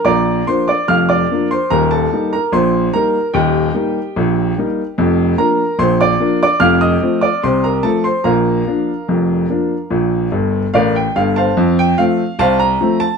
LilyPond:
<<
  \new Staff \with { instrumentName = "Upright piano" } { \time 2/4 \key bes \major \tempo 4 = 73 <d'' bes'' d'''>8 <c'' c'''>16 <d'' d'''>16 <f'' f'''>16 <d'' d'''>8 <c'' c'''>16 | <bes' bes''>16 <a' a''>8 <bes' bes''>16 <c'' c'''>8 <bes' bes''>8 | <g' ees'' g''>2 | r8 <bes' bes''>8 <c'' c'''>16 <d'' d'''>8 <d'' d'''>16 |
<f'' f'''>16 <ees'' ees'''>8 <d'' d'''>16 <c'' c'''>16 <bes' bes''>16 <a' a''>16 <c'' c'''>16 | <bes' f'' bes''>2~ | <bes' f'' bes''>4 <bes' d'' f''>16 g''16 f''16 <c'' f'' a''>16~ | \key f \major <c'' f'' a''>16 g''16 f''8 <c'' f'' a''>16 bes''8 a''16 | }
  \new Staff \with { instrumentName = "Upright piano" } { \clef bass \time 2/4 \key bes \major <bes,, bes,>8 <f bes d'>8 <f,, f,>8 <f bes d'>8 | <ees,, ees,>8 <g bes ees'>8 <bes,, bes,>8 <g bes ees'>8 | <ees,, ees,>8 <g bes ees'>8 <bes,, bes,>8 <g bes ees'>8 | <f,, f,>8 <f bes d'>8 <bes,, bes,>8 <f bes d'>8 |
<f,, f,>8 <f a c'>8 <c, c>8 <f a c'>8 | <bes,, bes,>8 <f bes d'>8 <f,, f,>8 <f bes d'>8 | <bes,, bes,>8 <g,, g,>8 <a,, a,>8 <g,, g,>8 | \key f \major f,8 <f a c'>8 c,8 <f a c'>8 | }
>>